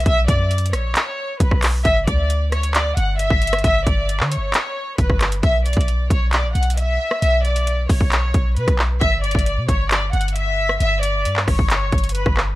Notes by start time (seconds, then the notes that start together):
0.00 closed hi-hat
0.06 B1 E5, kick, closed hi-hat
0.28 F#2 D5, kick, closed hi-hat
0.51 closed hi-hat
0.58 closed hi-hat
0.66 closed hi-hat
0.73 A#1 C#5, cross-stick, closed hi-hat
0.95 clap, closed hi-hat
1.40 B1 B4, kick, closed hi-hat
1.51 B1, kick, cross-stick
1.62 clap, open hi-hat
1.85 G1 E5, kick, closed hi-hat
2.07 D2 D5, kick, closed hi-hat
2.30 closed hi-hat
2.52 C#5, cross-stick, closed hi-hat
2.63 closed hi-hat
2.74 D5, clap, closed hi-hat
2.97 G1 F#5, closed hi-hat
3.19 E5, closed hi-hat
3.30 G1, kick
3.42 closed hi-hat
3.47 closed hi-hat
3.53 cross-stick, closed hi-hat
3.59 closed hi-hat
3.64 G1 E5, kick, closed hi-hat
3.87 G1 D5, kick, closed hi-hat
4.09 closed hi-hat
4.20 D3, clap
4.31 C#5, closed hi-hat
4.37 G1
4.54 clap, closed hi-hat
4.98 G1 B4, kick, closed hi-hat
5.10 G1, kick, cross-stick
5.21 cross-stick, clap, closed hi-hat, open hi-hat
5.32 closed hi-hat
5.43 B1 E5, kick, closed hi-hat
5.65 D5, closed hi-hat
5.73 B1, kick, closed hi-hat
5.81 closed hi-hat
5.88 closed hi-hat
6.10 B1 C#5, kick, closed hi-hat
6.33 D5, clap, closed hi-hat
6.44 A#1
6.55 B1 F#5, closed hi-hat
6.63 closed hi-hat
6.70 closed hi-hat
6.77 E5, closed hi-hat
7.11 cross-stick
7.22 B1 E5, closed hi-hat
7.45 D5, closed hi-hat
7.56 closed hi-hat
7.67 closed hi-hat
7.89 B1 C#5, kick, open hi-hat
8.01 B1, kick
8.12 clap, closed hi-hat
8.34 B1, kick, closed hi-hat
8.57 B2 B4, closed hi-hat
8.68 B1, kick, cross-stick, closed hi-hat
8.79 clap
9.01 G1 E5, kick, closed hi-hat
9.23 D5, closed hi-hat
9.31 G1, kick, closed hi-hat
9.39 closed hi-hat
9.46 closed hi-hat
9.57 B2
9.68 G1 C#5, kick, closed hi-hat
9.90 D5, clap, closed hi-hat
10.13 G1 F#5, closed hi-hat
10.21 closed hi-hat
10.28 closed hi-hat
10.36 E5, closed hi-hat
10.69 cross-stick
10.80 G1 E5, closed hi-hat
11.03 D5, closed hi-hat
11.25 G2, closed hi-hat
11.36 clap
11.47 G1 C#5, kick, cross-stick, open hi-hat
11.59 G1, kick
11.70 clap, closed hi-hat
11.92 G1, kick, closed hi-hat
11.98 closed hi-hat
12.04 closed hi-hat
12.09 closed hi-hat
12.15 B4, closed hi-hat
12.26 G1, kick, cross-stick
12.37 cross-stick, clap